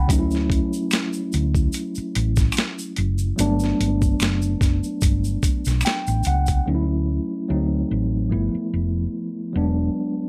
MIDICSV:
0, 0, Header, 1, 5, 480
1, 0, Start_track
1, 0, Key_signature, 2, "major"
1, 0, Tempo, 821918
1, 49, Time_signature, 4, 2, 24, 8
1, 6009, End_track
2, 0, Start_track
2, 0, Title_t, "Tine electric piano"
2, 0, Program_c, 0, 4
2, 0, Control_c, 0, 64, 127
2, 0, Note_on_c, 0, 78, 65
2, 0, Note_on_c, 0, 83, 73
2, 45, Note_on_c, 0, 54, 70
2, 53, Note_on_c, 0, 57, 65
2, 56, Control_c, 0, 64, 0
2, 59, Note_off_c, 0, 83, 0
2, 61, Note_off_c, 0, 78, 0
2, 62, Note_on_c, 0, 61, 64
2, 71, Note_on_c, 0, 63, 71
2, 102, Note_off_c, 0, 63, 0
2, 110, Note_on_c, 0, 64, 74
2, 150, Control_c, 0, 64, 127
2, 1943, Note_off_c, 0, 54, 0
2, 1948, Note_off_c, 0, 57, 0
2, 1952, Note_off_c, 0, 61, 0
2, 1964, Note_on_c, 0, 54, 67
2, 1973, Note_on_c, 0, 57, 70
2, 1976, Note_off_c, 0, 64, 0
2, 1976, Control_c, 0, 64, 0
2, 1983, Note_on_c, 0, 59, 64
2, 1989, Note_on_c, 0, 62, 81
2, 2088, Control_c, 0, 64, 127
2, 3417, Note_on_c, 0, 79, 66
2, 3637, Note_off_c, 0, 79, 0
2, 3662, Note_on_c, 0, 78, 66
2, 3863, Note_off_c, 0, 54, 0
2, 3868, Note_off_c, 0, 57, 0
2, 3873, Note_off_c, 0, 59, 0
2, 3876, Note_off_c, 0, 62, 0
2, 3879, Note_off_c, 0, 78, 0
2, 3889, Note_on_c, 0, 54, 58
2, 3894, Note_on_c, 0, 57, 49
2, 3897, Control_c, 0, 64, 0
2, 3898, Note_on_c, 0, 61, 49
2, 3902, Note_on_c, 0, 63, 49
2, 3937, Note_off_c, 0, 63, 0
2, 3940, Note_on_c, 0, 64, 66
2, 4004, Control_c, 0, 64, 127
2, 4364, Note_off_c, 0, 54, 0
2, 4367, Note_off_c, 0, 57, 0
2, 4371, Note_on_c, 0, 54, 68
2, 4373, Note_off_c, 0, 61, 0
2, 4374, Note_on_c, 0, 57, 54
2, 4376, Control_c, 0, 64, 0
2, 4380, Note_on_c, 0, 60, 58
2, 4384, Note_on_c, 0, 63, 69
2, 4395, Note_off_c, 0, 64, 0
2, 4496, Control_c, 0, 64, 127
2, 4844, Note_off_c, 0, 57, 0
2, 4845, Note_on_c, 0, 53, 49
2, 4850, Note_off_c, 0, 54, 0
2, 4851, Note_on_c, 0, 57, 46
2, 4854, Note_off_c, 0, 60, 0
2, 4854, Note_on_c, 0, 59, 49
2, 4856, Control_c, 0, 64, 0
2, 4857, Note_off_c, 0, 63, 0
2, 4860, Note_on_c, 0, 64, 57
2, 4971, Control_c, 0, 64, 127
2, 5565, Note_on_c, 0, 54, 60
2, 5567, Note_off_c, 0, 53, 0
2, 5570, Note_off_c, 0, 57, 0
2, 5572, Note_off_c, 0, 59, 0
2, 5574, Note_off_c, 0, 64, 0
2, 5574, Note_on_c, 0, 56, 51
2, 5577, Control_c, 0, 64, 0
2, 5580, Note_on_c, 0, 59, 56
2, 5590, Note_on_c, 0, 62, 63
2, 5671, Control_c, 0, 64, 127
2, 6009, Note_off_c, 0, 54, 0
2, 6009, Note_off_c, 0, 56, 0
2, 6009, Note_off_c, 0, 59, 0
2, 6009, Note_off_c, 0, 62, 0
2, 6009, End_track
3, 0, Start_track
3, 0, Title_t, "Fingered electric bass"
3, 0, Program_c, 1, 33
3, 58, Note_on_c, 1, 38, 88
3, 352, Note_off_c, 1, 38, 0
3, 784, Note_on_c, 1, 38, 83
3, 970, Note_off_c, 1, 38, 0
3, 1262, Note_on_c, 1, 33, 100
3, 1450, Note_off_c, 1, 33, 0
3, 1742, Note_on_c, 1, 30, 94
3, 1929, Note_off_c, 1, 30, 0
3, 1979, Note_on_c, 1, 31, 99
3, 2168, Note_off_c, 1, 31, 0
3, 2221, Note_on_c, 1, 31, 92
3, 2409, Note_off_c, 1, 31, 0
3, 2461, Note_on_c, 1, 30, 83
3, 2649, Note_off_c, 1, 30, 0
3, 2696, Note_on_c, 1, 30, 81
3, 2798, Note_off_c, 1, 30, 0
3, 2938, Note_on_c, 1, 31, 83
3, 3127, Note_off_c, 1, 31, 0
3, 3310, Note_on_c, 1, 35, 83
3, 3393, Note_off_c, 1, 35, 0
3, 3549, Note_on_c, 1, 33, 73
3, 3633, Note_off_c, 1, 33, 0
3, 3658, Note_on_c, 1, 37, 94
3, 3847, Note_off_c, 1, 37, 0
3, 3898, Note_on_c, 1, 38, 81
3, 4192, Note_off_c, 1, 38, 0
3, 4380, Note_on_c, 1, 38, 68
3, 4568, Note_off_c, 1, 38, 0
3, 4621, Note_on_c, 1, 33, 73
3, 4859, Note_on_c, 1, 31, 83
3, 4868, Note_off_c, 1, 33, 0
3, 4960, Note_off_c, 1, 31, 0
3, 5102, Note_on_c, 1, 29, 72
3, 5289, Note_off_c, 1, 29, 0
3, 5580, Note_on_c, 1, 28, 83
3, 5769, Note_off_c, 1, 28, 0
3, 6009, End_track
4, 0, Start_track
4, 0, Title_t, "Muted fingered electric bass strokes"
4, 1155, Note_on_c, 9, 29, 50
4, 1213, Note_off_c, 9, 29, 0
4, 4991, Note_on_c, 9, 29, 38
4, 5049, Note_off_c, 9, 29, 0
4, 6009, End_track
5, 0, Start_track
5, 0, Title_t, "Drums"
5, 52, Note_on_c, 9, 36, 107
5, 57, Note_on_c, 9, 42, 72
5, 59, Note_on_c, 9, 82, 66
5, 110, Note_off_c, 9, 36, 0
5, 115, Note_off_c, 9, 42, 0
5, 117, Note_off_c, 9, 82, 0
5, 180, Note_on_c, 9, 82, 41
5, 204, Note_on_c, 9, 38, 42
5, 239, Note_off_c, 9, 82, 0
5, 262, Note_off_c, 9, 38, 0
5, 290, Note_on_c, 9, 36, 89
5, 301, Note_on_c, 9, 42, 59
5, 349, Note_off_c, 9, 36, 0
5, 359, Note_off_c, 9, 42, 0
5, 427, Note_on_c, 9, 82, 42
5, 486, Note_off_c, 9, 82, 0
5, 532, Note_on_c, 9, 26, 60
5, 532, Note_on_c, 9, 82, 63
5, 542, Note_on_c, 9, 42, 91
5, 546, Note_on_c, 9, 38, 122
5, 590, Note_off_c, 9, 26, 0
5, 590, Note_off_c, 9, 82, 0
5, 600, Note_off_c, 9, 42, 0
5, 604, Note_off_c, 9, 38, 0
5, 660, Note_on_c, 9, 82, 45
5, 718, Note_off_c, 9, 82, 0
5, 773, Note_on_c, 9, 82, 42
5, 782, Note_on_c, 9, 42, 60
5, 831, Note_off_c, 9, 82, 0
5, 840, Note_off_c, 9, 42, 0
5, 903, Note_on_c, 9, 36, 89
5, 906, Note_on_c, 9, 82, 35
5, 961, Note_off_c, 9, 36, 0
5, 965, Note_off_c, 9, 82, 0
5, 1008, Note_on_c, 9, 82, 55
5, 1018, Note_on_c, 9, 42, 66
5, 1066, Note_off_c, 9, 82, 0
5, 1076, Note_off_c, 9, 42, 0
5, 1139, Note_on_c, 9, 82, 40
5, 1198, Note_off_c, 9, 82, 0
5, 1258, Note_on_c, 9, 42, 69
5, 1316, Note_off_c, 9, 42, 0
5, 1379, Note_on_c, 9, 82, 47
5, 1385, Note_on_c, 9, 36, 89
5, 1394, Note_on_c, 9, 42, 34
5, 1398, Note_on_c, 9, 38, 28
5, 1438, Note_off_c, 9, 82, 0
5, 1443, Note_off_c, 9, 36, 0
5, 1453, Note_off_c, 9, 42, 0
5, 1457, Note_off_c, 9, 38, 0
5, 1473, Note_on_c, 9, 26, 54
5, 1473, Note_on_c, 9, 82, 57
5, 1501, Note_on_c, 9, 42, 75
5, 1509, Note_on_c, 9, 38, 120
5, 1532, Note_off_c, 9, 26, 0
5, 1532, Note_off_c, 9, 82, 0
5, 1560, Note_off_c, 9, 42, 0
5, 1568, Note_off_c, 9, 38, 0
5, 1627, Note_on_c, 9, 82, 50
5, 1685, Note_off_c, 9, 82, 0
5, 1731, Note_on_c, 9, 42, 57
5, 1789, Note_off_c, 9, 42, 0
5, 1858, Note_on_c, 9, 82, 47
5, 1917, Note_off_c, 9, 82, 0
5, 1977, Note_on_c, 9, 82, 63
5, 1979, Note_on_c, 9, 42, 84
5, 2036, Note_off_c, 9, 82, 0
5, 2037, Note_off_c, 9, 42, 0
5, 2100, Note_on_c, 9, 82, 46
5, 2124, Note_on_c, 9, 38, 44
5, 2158, Note_off_c, 9, 82, 0
5, 2183, Note_off_c, 9, 38, 0
5, 2223, Note_on_c, 9, 42, 72
5, 2281, Note_off_c, 9, 42, 0
5, 2347, Note_on_c, 9, 36, 90
5, 2347, Note_on_c, 9, 82, 42
5, 2405, Note_off_c, 9, 36, 0
5, 2405, Note_off_c, 9, 82, 0
5, 2453, Note_on_c, 9, 26, 57
5, 2453, Note_on_c, 9, 82, 59
5, 2465, Note_on_c, 9, 42, 98
5, 2468, Note_on_c, 9, 38, 122
5, 2511, Note_off_c, 9, 26, 0
5, 2511, Note_off_c, 9, 82, 0
5, 2523, Note_off_c, 9, 42, 0
5, 2527, Note_off_c, 9, 38, 0
5, 2581, Note_on_c, 9, 82, 42
5, 2639, Note_off_c, 9, 82, 0
5, 2692, Note_on_c, 9, 36, 96
5, 2696, Note_on_c, 9, 82, 39
5, 2704, Note_on_c, 9, 42, 61
5, 2709, Note_on_c, 9, 38, 32
5, 2750, Note_off_c, 9, 36, 0
5, 2754, Note_off_c, 9, 82, 0
5, 2763, Note_off_c, 9, 42, 0
5, 2767, Note_off_c, 9, 38, 0
5, 2824, Note_on_c, 9, 82, 36
5, 2882, Note_off_c, 9, 82, 0
5, 2928, Note_on_c, 9, 82, 59
5, 2932, Note_on_c, 9, 36, 95
5, 2938, Note_on_c, 9, 42, 72
5, 2986, Note_off_c, 9, 82, 0
5, 2991, Note_off_c, 9, 36, 0
5, 2996, Note_off_c, 9, 42, 0
5, 3062, Note_on_c, 9, 82, 43
5, 3120, Note_off_c, 9, 82, 0
5, 3170, Note_on_c, 9, 36, 85
5, 3170, Note_on_c, 9, 82, 47
5, 3177, Note_on_c, 9, 42, 72
5, 3228, Note_off_c, 9, 82, 0
5, 3229, Note_off_c, 9, 36, 0
5, 3236, Note_off_c, 9, 42, 0
5, 3300, Note_on_c, 9, 82, 52
5, 3315, Note_on_c, 9, 42, 40
5, 3319, Note_on_c, 9, 38, 33
5, 3358, Note_off_c, 9, 82, 0
5, 3373, Note_off_c, 9, 42, 0
5, 3377, Note_off_c, 9, 38, 0
5, 3392, Note_on_c, 9, 26, 57
5, 3392, Note_on_c, 9, 82, 64
5, 3421, Note_on_c, 9, 42, 75
5, 3429, Note_on_c, 9, 38, 110
5, 3451, Note_off_c, 9, 26, 0
5, 3451, Note_off_c, 9, 82, 0
5, 3479, Note_off_c, 9, 42, 0
5, 3487, Note_off_c, 9, 38, 0
5, 3545, Note_on_c, 9, 82, 46
5, 3604, Note_off_c, 9, 82, 0
5, 3640, Note_on_c, 9, 82, 43
5, 3650, Note_on_c, 9, 42, 64
5, 3699, Note_off_c, 9, 82, 0
5, 3708, Note_off_c, 9, 42, 0
5, 3775, Note_on_c, 9, 82, 49
5, 3785, Note_on_c, 9, 42, 43
5, 3786, Note_on_c, 9, 36, 77
5, 3833, Note_off_c, 9, 82, 0
5, 3843, Note_off_c, 9, 42, 0
5, 3845, Note_off_c, 9, 36, 0
5, 6009, End_track
0, 0, End_of_file